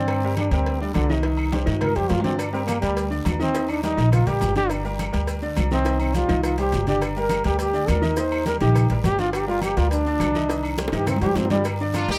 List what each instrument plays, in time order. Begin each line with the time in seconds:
Already playing: upright bass G2, upright piano D3 D4 D5, trombone C4
0.08 cowbell, high conga, low agogo, long guiro, claves
0.23 upright piano G3 G4 A#4, high conga
0.37 trombone D4, cowbell, high conga, low timbale, low agogo, short guiro, claves
0.51 upright bass D2, upright piano G3 G4 A#4, trombone C4, cowbell, short guiro
0.66 cowbell, high conga, low agogo, long guiro
0.81 upright piano D3 D4 D5, trombone G3, high conga
0.94 upright bass C2, trombone D3, cowbell, high conga, low timbale, low agogo, short guiro, claves
1.09 upright piano D#3 D#4 D#5, high conga, short guiro
1.23 upright piano D#3 D#4 D#5, cowbell, high conga, low agogo, long guiro
1.37 high conga, low agogo, claves
1.52 upright piano G3 G4 C5, cowbell, high conga, high timbale, short guiro
1.66 upright bass G2, upright piano D#3 D#4 D#5, cowbell, short guiro
1.72 low timbale
1.81 trombone A#4, cowbell, high conga, low conga, low timbale, low agogo, long guiro, claves
1.95 upright bass F2, upright piano G3 G4 C5, trombone G4, cowbell
2.10 upright bass G2, trombone F4, cowbell, high conga, low timbale, low agogo, short guiro
2.20 upright piano D3, trombone C4, low timbale
2.24 upright piano D4 D5, cowbell, high conga, short guiro
2.29 low timbale
2.39 trombone D4, cowbell, high conga, low agogo, long guiro, claves, maracas
2.52 upright piano G3 G4 A#4, trombone C4, high conga, maracas
2.66 trombone A#3, cowbell, high conga, low timbale, low agogo, short guiro, claves, maracas
2.81 upright bass D2, trombone G3, upright piano G3 G4 A#4, cowbell, high conga, short guiro, maracas
2.96 cowbell, high conga, low agogo, long guiro, maracas
3.10 upright piano D3 D4 D5, high conga, maracas
3.25 upright bass D#2, cowbell, high conga, low timbale, low agogo, short guiro, claves, maracas
3.39 upright piano D#3 D#4 D#5, trombone C4, high conga, short guiro, maracas
3.54 upright piano D#3 D#4 D#5, cowbell, low agogo, long guiro, maracas
3.69 trombone D4, high conga, low agogo, claves, maracas
3.83 upright piano G3 G4 A#4, trombone D#4, cowbell, high conga, low timbale, short guiro, maracas
3.97 upright bass A#1, upright piano D#3 D#4 D#5, cowbell, short guiro, maracas
4.12 trombone F4, cowbell, high conga, low conga, low agogo, long guiro, claves, maracas
4.27 upright bass A1, upright piano G3 G4 A#4, trombone G4, cowbell, high conga, low conga, maracas
4.41 upright bass G1, cowbell, high conga, low timbale, low agogo, short guiro, maracas
4.56 upright piano D3 D4 D5, trombone G4, cowbell, high conga, short guiro, maracas
4.70 cowbell, high conga, low agogo, long guiro, claves, maracas
4.84 upright piano G3 G4 A#4, high conga, maracas
4.99 cowbell, high conga, low timbale, low agogo, short guiro, claves, maracas
5.12 upright bass D2, upright piano G3 G4 A#4, cowbell, short guiro, maracas
5.27 cowbell, high conga, low agogo, long guiro, maracas
5.42 upright piano D3 D4 D5, high conga, maracas
5.56 upright bass C2, cowbell, high conga, low timbale, low agogo, short guiro, claves, maracas
5.71 upright piano D#3 D#4 D#5, trombone C4, high conga, short guiro, maracas
5.85 upright piano D#3 D#4 D#5, cowbell, high conga, low agogo, long guiro, maracas
5.99 trombone C4, high conga, low agogo, claves, maracas
6.14 upright piano G3 G4 C5, trombone F4, cowbell, high conga, low timbale, short guiro, maracas
6.28 upright bass C2, upright piano D#3 D#4 D#5, cowbell, high conga, short guiro, maracas
6.43 trombone F4, cowbell, low agogo, long guiro, claves, maracas
6.58 upright piano G3 G4 C5, trombone G4, cowbell, maracas
6.72 upright bass G1, cowbell, low conga, low timbale, low agogo, short guiro, maracas
6.87 upright piano D3 D4 D5, trombone G4, cowbell, low conga, short guiro, maracas
7.01 cowbell, high conga, low agogo, long guiro, claves, maracas
7.15 upright piano G3 G4 A#4, trombone A#4, high conga, maracas
7.29 cowbell, high conga, low timbale, low agogo, short guiro, claves, maracas
7.44 upright bass D2, upright piano G3 G4 A#4, trombone G4, cowbell, short guiro, maracas
7.59 trombone G4, cowbell, high conga, low agogo, long guiro, maracas
7.73 upright piano D3 D4 D5, high conga, maracas
7.88 upright bass D#2, trombone A#4, cowbell, high conga, low timbale, low agogo, short guiro, claves, maracas
8.02 upright piano D#3 D#4 D#5, high conga, short guiro, maracas
8.16 upright piano D#3 D#4 D#5, trombone C5, cowbell, high conga, low agogo, long guiro, maracas
8.31 high conga, low agogo, claves, maracas
8.46 upright piano G3 G4 A#4, trombone A#4, cowbell, high conga, low timbale, short guiro, maracas
8.60 upright bass A#1, upright piano D#3 D#4 D#5, trombone G4, cowbell, short guiro, maracas
8.75 cowbell, high conga, low conga, low agogo, long guiro, claves, maracas
8.90 upright bass A1, upright piano G3 G4 A#4, cowbell, high conga, maracas
9.04 upright bass G1, trombone G4, cowbell, high conga, low timbale, low agogo, short guiro, maracas
9.18 upright piano D3 D4 D5, trombone F4, cowbell, high conga, short guiro, maracas
9.33 trombone G4, cowbell, high conga, low agogo, long guiro, claves, maracas
9.47 upright piano G3 G4 A#4, trombone F4, high conga, maracas
9.62 trombone G4, cowbell, high conga, low timbale, low agogo, short guiro, claves, maracas
9.76 upright bass D2, upright piano G3 G4 A#4, trombone F4, cowbell, high conga, short guiro, maracas
9.91 trombone D4, cowbell, high conga, low agogo, long guiro, maracas
10.05 upright piano D3 D4 D5, high conga, maracas
10.20 upright bass C2, cowbell, high conga, low timbale, low agogo, short guiro, claves, maracas
10.35 upright piano D#3 D#4 D#5, high conga, short guiro, maracas
10.49 upright piano D#3 D#4 D#5, cowbell, low agogo, long guiro, maracas
10.63 high conga, low agogo, claves, maracas
10.78 upright piano G3 G4 C5, cowbell, high bongo, high conga, low timbale, short guiro, maracas
10.88 high bongo
10.92 upright bass G2, upright piano D#3 D#4 D#5, trombone G4, cowbell, high timbale, short guiro, maracas
11.06 trombone C4, cowbell, high bongo, high conga, low conga, high timbale, low agogo, long guiro, claves, maracas
11.16 low bongo
11.21 upright bass F2, upright piano G3 G4 C5, trombone G4, cowbell, high conga, low timbale, maracas
11.26 low bongo
11.35 upright bass G2, trombone C4, cowbell, low bongo, high conga, low timbale, low agogo, short guiro, maracas
11.45 low bongo
11.50 upright piano D3 D4 D5, trombone G3, cowbell, high conga, low timbale, short guiro, maracas
11.55 low bongo
11.64 upright piano G3 G4 A#4, cowbell, high conga, low agogo, long guiro, claves, maracas
11.79 upright piano D3 D4 D5, high conga, maracas
11.94 horn section D4 F4, cowbell, high conga, low timbale, low agogo, short guiro, claves, maracas
12.08 upright bass D2, upright piano G3 G4 A#4, horn section D#4 G4, cowbell, high conga, short guiro, maracas